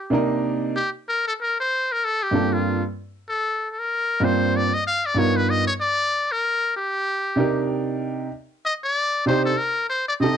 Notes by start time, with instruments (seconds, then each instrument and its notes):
Already playing: muted trumpet G4
0.10 grand piano C3 A#3 D4 D#4 A#4
0.76 muted trumpet G4
1.09 muted trumpet A#4
1.28 muted trumpet A4
1.41 muted trumpet A#4
1.60 muted trumpet C5
1.92 muted trumpet A#4
2.05 muted trumpet A4
2.23 muted trumpet G4
2.31 grand piano G2 A#3 C4 D4 F4 A4
2.54 muted trumpet F4
3.29 muted trumpet A4
3.71 muted trumpet A4
3.79 muted trumpet A#4
4.20 grand piano G2 A#3 C4 D4 F4 C5
4.25 muted trumpet C5
4.57 muted trumpet D5
4.74 muted trumpet D#5
4.87 muted trumpet F5
5.06 muted trumpet D5
5.14 grand piano G2 B3 D#4 F4 A#4
5.19 muted trumpet C#5
5.37 muted trumpet B4
5.50 muted trumpet D#5
5.68 muted trumpet C#5
5.81 muted trumpet D5
6.32 muted trumpet A#4
6.77 muted trumpet G4
7.36 grand piano C3 D4 D#4 G4
7.40 grand piano A#4
8.66 muted trumpet D#5
8.84 muted trumpet D5
9.26 grand piano C3 D4 D#4 G4 C5, muted trumpet C5
9.45 muted trumpet A4
9.58 muted trumpet A#4
9.90 muted trumpet C5
10.09 muted trumpet D5
10.20 grand piano C3 C4 D#4 G4 A4, muted trumpet D#5